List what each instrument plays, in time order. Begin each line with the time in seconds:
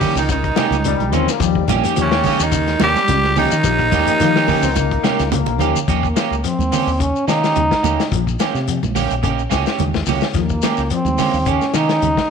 Already playing: tine electric piano F3 A#3 D#4 G4, alto saxophone G3, tenor saxophone G4
0.01 clean electric guitar D#3 A#3 C#4 G4, kick, open hi-hat, low conga, shekere
0.15 fingered electric bass C#2, alto saxophone D#3, tenor saxophone D#4, shekere
0.29 clean electric guitar C#3, alto saxophone D#3, tenor saxophone D#4, kick, closed hi-hat, high conga, shekere
0.44 kick, closed hi-hat
0.56 clean electric guitar C3 A#3 C#4 G4, muted fingered electric bass stroke, snare, closed hi-hat, high conga, shekere
0.71 fingered electric bass C#2, closed hi-hat, high conga, shekere
0.84 clean electric guitar C#3, trombone section G3, closed hi-hat, high conga, shekere
0.99 fingered electric bass A#1, closed hi-hat, high conga
1.11 fingered electric bass D#2, clean electric guitar D#3 A#3 C#4, tine electric piano F3 A#3 D#4 F4, trombone section C4, closed hi-hat, low conga, shekere
1.27 trombone section A#3, snare, shekere
1.40 fingered electric bass D#2, tine electric piano F3 A#3 D#4 G4, clean electric guitar F3, trombone section G3, kick, closed hi-hat, shekere
1.55 kick
1.68 fingered electric bass A#1, clean electric guitar D#3 A#3 C#4 G4, kick, snare, closed hi-hat, high conga, shekere
1.83 tine electric piano F3 A#3 D#4 G4, clean electric guitar C#4 G4, snare, closed hi-hat, shekere
1.96 fingered electric bass D#2, clean electric guitar F3, closed hi-hat, high conga, low conga, shekere
2.01 alto saxophone C#3, tenor saxophone C#4
2.11 clean electric guitar C#4 G4, snare, closed hi-hat
2.23 clean electric guitar D#3 A#3 C#4 G4, kick, open hi-hat, high conga, low conga, shekere
2.38 fingered electric bass D#2, closed hi-hat, shekere
2.43 alto saxophone D#3, tenor saxophone D#4
2.51 clean electric guitar C#3, kick, closed hi-hat, high conga, shekere
2.67 snare, closed hi-hat
2.80 fingered electric bass D#2, clean electric guitar C3 A#3 C#4 G4, tenor saxophone G4, snare, closed hi-hat, high conga, shekere
2.84 alto saxophone G3
2.95 snare, closed hi-hat, high conga, shekere
3.08 fingered electric bass C#2, clean electric guitar C#3, closed hi-hat, high conga, shekere
3.24 snare, high conga
3.36 clean electric guitar D#3 A#3 C#4 G4, alto saxophone D#3, tine electric piano F3 A#3 D#4 G4, tenor saxophone D#4, open hi-hat, low conga, shekere
3.51 fingered electric bass D#3, closed hi-hat, shekere
3.63 fingered electric bass A#1, tine electric piano F3 A#3 D#4 G4, clean electric guitar F3, kick, closed hi-hat, shekere
3.79 kick, closed hi-hat
3.92 fingered electric bass D#2, clean electric guitar D#3 A#3 C#4 G4, trombone section G3, kick, closed hi-hat, high conga, shekere
4.05 tine electric piano F3 A#3 D#4 G4, muted fingered electric bass stroke, closed hi-hat, shekere
4.20 fingered electric bass D#3, clean electric guitar F3, trombone section A#3, snare, closed hi-hat, high conga, low conga, shekere
4.36 clean electric guitar C#4 G4, snare, closed hi-hat
4.48 clean electric guitar D#3 A#3 C#4 G4, trombone section A#3, kick, open hi-hat, low conga, shekere
4.61 fingered electric bass C#2, trombone section C4, shekere
4.75 clean electric guitar C#3, trombone section A#3, kick, closed hi-hat, high conga, shekere
4.91 kick, closed hi-hat
5.03 clean electric guitar C3 A#3 C#4 G4, muted fingered electric bass stroke, snare, closed hi-hat, high conga, shekere
5.19 fingered electric bass C#2, snare, closed hi-hat, shekere
5.32 clean electric guitar C#3, trombone section A#3, closed hi-hat, low conga, shekere
5.46 fingered electric bass A#1, closed hi-hat, low conga
5.58 fingered electric bass D#2, clean electric guitar D#3 A#3 C#4 G4, tine electric piano F3 A#3 D#4 G4, closed hi-hat, low conga, shekere
5.76 low conga, shekere
5.88 fingered electric bass D#2, clean electric guitar F3 A#3 C#4 G4, trombone A#3, kick, closed hi-hat, high conga, shekere
6.03 kick, shekere
6.16 clean electric guitar D#3 A#3 C#4 G4, snare, closed hi-hat, high conga, shekere
6.31 fingered electric bass C#2, shekere
6.44 clean electric guitar F3, trombone C4, closed hi-hat, high conga, shekere
6.59 fingered electric bass D#2, high conga, shekere
6.72 clean electric guitar D#3 A#3 C#4 G4, open hi-hat, low conga, shekere
6.87 fingered electric bass D#2, shekere
6.99 clean electric guitar C#3, trombone C#4, kick, closed hi-hat, high conga, shekere
7.16 shekere
7.28 clean electric guitar C3 A#3 C#4 G4, fingered electric bass D#3, trombone D#4, snare, closed hi-hat, shekere
7.43 clean electric guitar C#4 G4, snare, closed hi-hat, shekere
7.56 fingered electric bass D#2, clean electric guitar C#3, closed hi-hat, high conga, low conga, shekere
7.71 kick, snare, shekere
7.83 fingered electric bass D#2, clean electric guitar D#3 A#3 C#4 G4, closed hi-hat, high conga, low conga, shekere
8.00 snare, closed hi-hat, shekere
8.11 fingered electric bass A#1, clean electric guitar F3, kick, closed hi-hat, high conga, shekere
8.27 kick, shekere
8.39 clean electric guitar D#3 A#3 C#4 G4, snare, closed hi-hat, high conga, shekere
8.54 fingered electric bass C3, snare, shekere
8.68 clean electric guitar F3, closed hi-hat, high conga, shekere
8.83 fingered electric bass A#1, kick, high conga, shekere
8.95 clean electric guitar G3 A#3 C#4 G4, open hi-hat, low conga, shekere
9.11 fingered electric bass A#1, closed hi-hat, shekere
9.23 clean electric guitar C#3 A#3 C#4 G4, kick, closed hi-hat, high conga, shekere
9.39 shekere
9.50 fingered electric bass C#2, clean electric guitar C3 A#3 C#4 G4, kick, snare, closed hi-hat, shekere
9.66 clean electric guitar C#4 G4, snare, closed hi-hat, shekere
9.79 fingered electric bass D#2, clean electric guitar C#3, closed hi-hat, high conga, low conga, shekere
9.94 kick, snare, high conga, shekere
10.06 fingered electric bass C#2, clean electric guitar D#3 A#3 C#4 G4, open hi-hat, high conga, low conga, shekere
10.21 snare, shekere
10.34 fingered electric bass D#2, clean electric guitar F3, trombone A#3, kick, snare, closed hi-hat, shekere
10.49 kick, shekere
10.62 clean electric guitar D#3 A#3 C#4 G4, snare, closed hi-hat, high conga, shekere
10.77 fingered electric bass C#2, snare, shekere
10.90 clean electric guitar F3, trombone C4, closed hi-hat, high conga, shekere
11.05 fingered electric bass D#2, high conga, shekere
11.18 clean electric guitar D#3 A#3 C#4 G4, snare, open hi-hat, high conga, low conga, shekere
11.34 fingered electric bass D#2, shekere
11.46 clean electric guitar C#3 A#3 C#4 G4, kick, closed hi-hat, shekere
11.50 trombone C#4
11.61 snare, shekere
11.73 clean electric guitar C3 A#3 C#4 G4, fingered electric bass D#3, trombone D#4, snare, closed hi-hat, shekere
11.89 clean electric guitar C#4 G4, snare, closed hi-hat, shekere
12.02 fingered electric bass D#2, clean electric guitar C#3, closed hi-hat, high conga, low conga, shekere
12.17 kick, snare, high conga, shekere